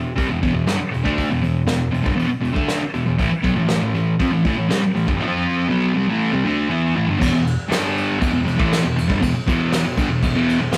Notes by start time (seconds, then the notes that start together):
Already playing: E2 B2
0.16 C3 G3, kick, open hi-hat
0.28 E2 B2
0.42 E2 B2, kick, open hi-hat
0.54 E2 B2
0.67 G2 D3, snare, open hi-hat
0.79 muted distorted electric guitar stroke
0.91 E2 B2, open hi-hat
1.04 D3 A3 D4, kick
1.18 kick, open hi-hat
1.30 E2 B2
1.41 E2 B2, open hi-hat
1.67 E2 B2, snare, open hi-hat
1.91 E2 B2, open hi-hat
2.03 G2 D3, kick
2.16 E2 B2, open hi-hat
2.27 muted distorted electric guitar stroke
2.40 E2 B2
2.45 open hi-hat
2.53 D3 A3 D4, kick
2.68 snare, open hi-hat
2.81 muted distorted electric guitar stroke
2.94 E2 B2, open hi-hat
3.06 E2 B2
3.18 A2 E3, kick, open hi-hat
3.32 muted distorted electric guitar stroke
3.43 B2 F#3, kick, open hi-hat
3.56 A2 E3
3.68 A2 E3, snare, open hi-hat
3.81 A2 E3
3.94 A2 E3, open hi-hat
4.19 F3 C4, kick, open hi-hat
4.32 A2 E3
4.45 A2 E3, kick, open hi-hat
4.57 A2 E3
4.70 C3 G3, snare, open hi-hat
4.83 muted distorted electric guitar stroke
4.95 A2 E3, open hi-hat
5.07 G2 D3, kick
5.19 F3 C4 F4
5.69 B2 F#3 B3
5.94 C3 G3
6.08 A2 E3 A3
6.32 C3 G3
6.45 D3 A3 D4
6.69 E3 B3 E4
6.96 A2 E3
7.07 G2 D3
7.19 E2 B2, kick, crash
7.32 E2 B2
7.47 ride
7.68 G2 D3 G3, snare, ride
7.97 ride
8.20 E2 B2, kick, ride
8.33 E2 B2
8.45 E2 B2, ride
8.58 A2 E3 A3, kick
8.73 snare, ride
8.82 E2 B2
8.96 E2 B2, ride
9.08 G2 D3, kick
9.20 E2 B2, kick, ride
9.34 muted distorted electric guitar stroke
9.46 E2 B2 E3, kick, ride
9.72 snare, ride
9.85 E2 B2
9.97 G2 D3, kick, ride
10.10 E2 B2
10.23 E2 B2, kick, ride
10.35 E2 B2 E3
10.49 ride
10.60 E2 B2
10.72 E2 B2, snare, ride